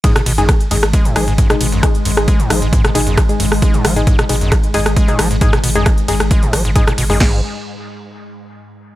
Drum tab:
CC |----------------|----------------|----------------|----------------|
RD |x-x-x-x-x-x-x-x-|x-x-x-x-x-x-x-x-|x-x-x-x-x-x-x-x-|x-x-x-x-x-x-x-x-|
HH |xxoxxxoxxxoxxxox|xxoxxxoxxxoxxxoo|xxoxxxoxxxoxxxox|xxoxxxoxxxoxxxoo|
SD |-r--r--r--r--r--|r--r--r--r--r--r|--r--r--r--r--r-|-r--r--r--r--r--|
BD |o---o---o---o---|o---o---o---o---|o---o---o---o---|o---o---o---o---|

CC |x---------------|
RD |----------------|
HH |----------------|
SD |o---------------|
BD |o---------------|